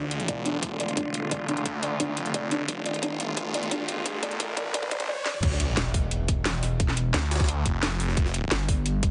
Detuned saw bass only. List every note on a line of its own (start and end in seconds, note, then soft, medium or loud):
0.00 0.27 D2 medium
0.28 1.64 E1 loud
1.66 2.16 D2 loud
2.17 2.67 F1 loud
2.68 3.01 F1 loud
3.03 4.39 G1 loud
4.40 5.08 A1 loud
5.43 5.76 D2 loud
7.14 7.64 D2 medium
7.66 8.16 F1 loud